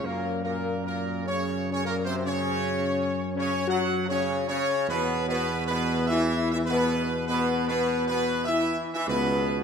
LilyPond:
<<
  \new Staff \with { instrumentName = "Trumpet section" } { \time 4/4 \key ges \lydian \tempo 4 = 100 \tuplet 3/2 { bes'4 bes'8~ bes'8 bes'4 } des''8. des''16 \tuplet 3/2 { bes'8 c''8 des''8~ } | des''4. des''8 \tuplet 3/2 { ges''4 des''8~ des''8 des''4 } | \tuplet 3/2 { b'4 b'8~ b'8 b'4 } e''8. e''16 b'4 | \tuplet 3/2 { b'4 b'8~ b'8 b'4 } e''8. e''16 b'4 | }
  \new Staff \with { instrumentName = "French horn section" } { \time 4/4 \key ges \lydian \tuplet 3/2 { bes4 bes8~ bes8 bes4 } des'8. des'16 \tuplet 3/2 { bes8 c'8 des'8~ } | des'4. des'8 \tuplet 3/2 { ges'4 des'8~ des'8 des'4 } | \tuplet 3/2 { b4 b8~ b8 b4 } e'8. e'16 b4 | \tuplet 3/2 { b4 b8~ b8 b4 } e'8. e'16 b4 | }
  \new Staff \with { instrumentName = "Trombone section" } { \clef bass \time 4/4 \key ges \lydian \tuplet 3/2 { bes,4 bes,8~ bes,8 bes,4 } des8. des16 \tuplet 3/2 { bes,8 c8 des8~ } | des4. des8 \tuplet 3/2 { ges4 des8~ des8 des4 } | \tuplet 3/2 { b,4 b,8~ b,8 b,4 } e8. e16 b,4 | \tuplet 3/2 { b,4 b,8~ b,8 b,4 } e8. e16 b,4 | }
  \new Staff \with { instrumentName = "Tuba" } { \clef bass \time 4/4 \key ges \lydian ges,1~ | ges,1 | e,1~ | e,2~ e,8 r8 des,4 | }
>>